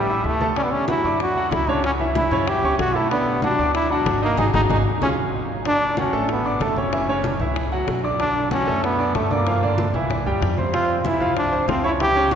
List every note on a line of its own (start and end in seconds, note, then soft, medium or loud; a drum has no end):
0.00 0.21 A1 medium
0.00 0.27 G3 medium
0.09 0.35 E4 medium
0.09 0.35 E5 medium
0.09 0.36 E6 medium
0.09 high conga soft
0.24 0.98 D2 medium
0.24 0.49 A3 medium
0.24 high conga soft
0.41 0.54 A3 medium
0.41 0.54 A4 medium
0.41 0.54 A5 medium
0.41 high conga medium
0.56 0.82 D3 medium
0.56 0.65 C#4 loud
0.56 0.82 D4 medium
0.56 0.83 D5 medium
0.56 high bongo medium
0.56 high conga soft
0.64 0.73 B3 medium
0.71 0.88 C#4 loud
0.71 high conga soft
0.88 1.02 F#3 medium
0.88 1.18 E4 loud
0.88 1.02 F#4 medium
0.88 1.02 F#5 medium
0.88 high bongo medium
0.88 high conga loud
1.04 1.48 F#2 medium
1.04 1.31 D4 medium
1.04 1.31 D5 medium
1.04 1.31 D6 medium
1.04 high conga soft
1.20 1.55 F#4 medium
1.20 high bongo medium
1.20 high conga soft
1.36 1.63 F#3 medium
1.36 1.63 F#4 medium
1.36 1.63 F#5 medium
1.36 high conga soft
1.51 2.26 C#2 medium
1.51 1.71 E4 loud
1.51 high bongo medium
1.51 low bongo medium
1.51 high conga medium
1.67 1.94 C#3 medium
1.67 1.94 C#4 medium
1.67 1.84 D4 medium
1.67 1.95 C#5 medium
1.67 high conga medium
1.83 1.92 C#4 loud
1.83 high bongo medium
1.83 high conga soft
1.99 2.26 E3 medium
1.99 2.26 E4 medium
1.99 2.26 E5 medium
1.99 high bongo soft
1.99 high conga soft
2.15 2.49 E4 loud
2.15 high bongo medium
2.15 high conga medium
2.31 2.61 F#2 medium
2.31 2.45 C#3 medium
2.31 2.45 C#4 medium
2.31 2.45 C#5 medium
2.31 high bongo soft
2.31 high conga soft
2.31 low conga medium
2.47 2.61 E3 medium
2.47 2.61 E4 medium
2.47 2.78 G4 loud
2.47 2.61 E5 medium
2.47 high bongo medium
2.47 high conga soft
2.62 2.78 C#2 medium
2.62 2.90 C#4 medium
2.62 2.90 C#5 medium
2.62 2.90 C#6 medium
2.62 high bongo soft
2.62 high conga soft
2.78 3.53 B1 medium
2.78 2.97 F#4 loud
2.78 high bongo medium
2.78 low bongo medium
2.78 high conga soft
2.95 3.08 A3 medium
2.95 3.11 E4 medium
2.95 3.08 A4 medium
2.95 3.09 A5 medium
3.11 3.37 D3 medium
3.11 3.41 B3 loud
3.11 3.37 D4 medium
3.11 3.38 D5 medium
3.11 high bongo medium
3.11 high conga soft
3.27 high conga soft
3.42 3.56 F#3 medium
3.42 3.73 D4 loud
3.42 3.56 F#4 medium
3.42 3.56 F#5 medium
3.42 high bongo medium
3.42 high conga medium
3.58 4.03 D2 medium
3.58 3.85 D4 medium
3.58 3.85 D5 medium
3.58 3.85 D6 medium
3.58 high conga soft
3.74 3.92 E4 loud
3.74 high bongo medium
3.74 high conga soft
3.90 4.17 F#3 medium
3.90 4.22 D4 loud
3.90 4.17 F#4 medium
3.90 4.17 F#5 medium
3.90 high conga soft
4.06 4.36 G#1 medium
4.06 high bongo medium
4.06 low bongo medium
4.06 high conga medium
4.22 4.35 D#3 medium
4.22 4.38 A#3 medium
4.22 4.36 D#4 medium
4.22 4.36 D#5 medium
4.37 4.50 G#1 medium
4.37 4.48 D#4 medium
4.37 4.47 D#4 medium
4.37 4.48 F#4 medium
4.37 4.48 G#4 medium
4.37 low bongo medium
4.37 high conga loud
4.53 4.65 G#1 medium
4.53 4.64 D#4 medium
4.53 4.62 D#4 medium
4.53 4.64 F#4 medium
4.53 4.64 G#4 medium
4.53 low bongo medium
4.53 high conga medium
4.69 4.82 G#1 medium
4.69 4.80 D#4 medium
4.69 4.78 D#4 medium
4.69 4.80 F#4 medium
4.69 4.80 G#4 medium
4.69 low bongo loud
4.69 high conga loud
5.01 5.13 C#2 medium
5.01 5.10 C#4 medium
5.01 5.12 C#4 medium
5.01 5.12 F4 medium
5.01 5.12 G#4 loud
5.01 low bongo loud
5.01 high conga medium
5.65 5.91 D3 medium
5.65 5.92 D4 medium
5.65 5.96 D4 loud
5.65 5.92 D5 medium
5.65 high bongo medium
5.65 high conga soft
5.81 high conga soft
5.97 6.10 F#3 medium
5.97 6.28 C#4 medium
5.97 6.11 F#4 medium
5.97 6.11 F#5 medium
5.97 high bongo medium
5.97 high conga loud
6.13 6.57 A1 medium
6.13 6.39 A3 medium
6.13 6.39 A4 medium
6.13 6.40 A5 medium
6.13 high conga soft
6.29 6.60 B3 medium
6.29 high bongo medium
6.29 high conga soft
6.45 6.58 D4 medium
6.45 6.58 D5 medium
6.45 6.58 D6 medium
6.45 high conga soft
6.60 7.35 F#1 medium
6.60 6.74 A3 medium
6.60 6.81 A3 medium
6.60 6.74 A4 medium
6.60 6.75 A5 medium
6.60 high bongo medium
6.60 low bongo medium
6.60 high conga medium
6.77 6.90 C#4 medium
6.77 7.42 C#4 medium
6.77 6.90 C#5 medium
6.77 6.90 C#6 medium
6.77 high conga medium
6.93 7.06 E3 medium
6.93 7.06 E4 medium
6.93 7.06 E5 medium
6.93 high bongo medium
6.93 high conga soft
7.08 7.35 C#3 medium
7.08 7.35 C#4 medium
7.08 7.35 C#5 medium
7.08 high bongo soft
7.08 high conga soft
7.24 high bongo medium
7.24 high conga medium
7.40 7.84 C#2 medium
7.40 7.67 E3 medium
7.40 7.67 E4 medium
7.40 7.67 E5 medium
7.40 high bongo soft
7.40 high conga soft
7.40 low conga medium
7.56 high bongo medium
7.56 high conga soft
7.72 7.98 F#3 medium
7.72 7.98 F#4 medium
7.72 7.98 F#5 medium
7.72 high bongo soft
7.72 high conga soft
7.87 8.61 B1 medium
7.87 high bongo medium
7.87 low bongo medium
7.87 high conga soft
8.04 8.17 D4 medium
8.04 8.17 D5 medium
8.04 8.17 D6 medium
8.20 8.46 D3 medium
8.20 8.46 D4 medium
8.20 8.49 D4 loud
8.20 8.46 D5 medium
8.20 high bongo medium
8.20 high conga soft
8.36 high conga soft
8.51 8.64 F#3 medium
8.51 8.81 C#4 loud
8.51 8.64 F#4 medium
8.51 8.65 F#5 medium
8.51 high bongo medium
8.51 high conga loud
8.67 9.12 F#2 medium
8.67 8.93 A3 medium
8.67 8.93 A4 medium
8.67 8.94 A5 medium
8.67 high conga soft
8.83 9.13 B3 medium
8.83 high bongo medium
8.83 high conga soft
8.99 9.12 D4 medium
8.99 9.12 D5 medium
8.99 9.12 D6 medium
8.99 high conga soft
9.15 9.88 G2 medium
9.15 9.28 A3 medium
9.15 9.33 A3 medium
9.15 9.28 A4 medium
9.15 9.28 A5 medium
9.15 high bongo medium
9.15 low bongo medium
9.15 high conga medium
9.31 9.95 A#3 medium
9.31 9.44 D4 medium
9.31 9.44 D5 medium
9.31 9.44 D6 medium
9.31 high conga medium
9.46 9.60 F3 medium
9.46 9.60 F4 medium
9.46 9.60 F5 medium
9.46 high bongo medium
9.46 high conga soft
9.63 9.89 D3 medium
9.63 9.89 D4 medium
9.63 9.89 D5 medium
9.63 high bongo soft
9.63 high conga soft
9.78 high bongo medium
9.78 high conga loud
9.94 10.24 C2 medium
9.94 10.21 E3 medium
9.94 10.21 E4 medium
9.94 10.21 E5 medium
9.94 high bongo soft
9.94 high conga soft
9.94 low conga medium
10.10 high bongo medium
10.10 high conga soft
10.10 low conga medium
10.26 10.41 D2 medium
10.26 10.52 G3 medium
10.26 10.52 G4 medium
10.26 10.53 G5 medium
10.26 high bongo soft
10.26 high conga soft
10.41 11.15 F2 medium
10.41 high bongo medium
10.41 low bongo medium
10.41 high conga soft
10.58 10.71 C4 medium
10.58 10.71 C5 medium
10.58 10.71 C6 medium
10.58 high conga medium
10.73 10.99 C3 medium
10.73 10.99 C4 medium
10.73 11.00 F4 loud
10.73 11.00 C5 medium
10.73 high bongo medium
10.73 high conga soft
10.89 high conga soft
11.00 11.08 F4 medium
11.05 11.18 E3 medium
11.05 11.18 E4 medium
11.05 11.37 E4 medium
11.05 11.18 E5 medium
11.05 high bongo medium
11.05 high conga medium
11.20 11.65 C2 medium
11.20 11.47 F3 medium
11.20 11.47 F4 medium
11.20 11.48 F5 medium
11.20 high conga soft
11.36 11.67 D4 medium
11.36 high bongo medium
11.36 high conga soft
11.52 11.66 C4 medium
11.52 11.66 C5 medium
11.52 11.66 C6 medium
11.52 high conga soft
11.68 12.35 C#2 medium
11.68 11.82 F3 medium
11.68 11.84 C4 medium
11.68 11.82 F4 medium
11.68 11.82 F5 medium
11.68 high bongo medium
11.68 low bongo medium
11.68 high conga medium
11.84 11.97 C#4 medium
11.84 11.92 E4 medium
11.84 11.97 C#5 medium
11.84 11.98 C#6 medium
12.00 12.13 E3 medium
12.00 12.13 E4 medium
12.00 12.34 G4 loud
12.00 12.14 E5 medium
12.00 high bongo medium
12.00 high conga soft
12.15 12.35 C#3 medium
12.15 12.35 C#4 medium
12.15 12.35 C#5 medium
12.15 high bongo soft
12.15 high conga soft
12.31 high conga medium